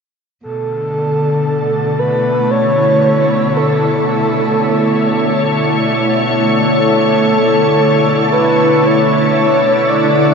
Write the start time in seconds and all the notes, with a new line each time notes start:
0.42 B2 D3 A4
1.28 A3
1.76 E4
1.99 B4
2.51 C#5
3.57 A4
4.01 C#5
6.76 A4
8.33 B4
8.87 C#5
9.09 D4
9.90 D5